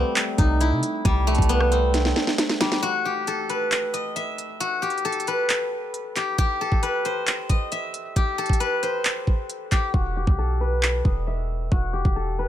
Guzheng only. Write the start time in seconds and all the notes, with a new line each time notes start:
Already playing: G3 A3 C4
0.38 D#4
0.61 E4
1.05 G3
1.27 A3
1.49 B3
1.72 C4
2.61 G3
2.83 F#4
3.05 G4
3.27 A4
3.50 B4
3.94 D#5
4.16 E5
4.60 F#4
4.82 G4
5.05 A4
5.28 B4
6.16 G4
6.38 G4
6.61 A4
6.83 B4
7.05 C5
7.50 D#5
7.72 E5
8.16 G4
8.38 A4
8.60 B4
8.83 C5
9.72 G4
9.94 F#4
10.17 G4
10.38 A4
10.61 B4
11.05 D#5
11.27 E5
11.72 F#4
11.93 G4
12.16 A4
12.39 B4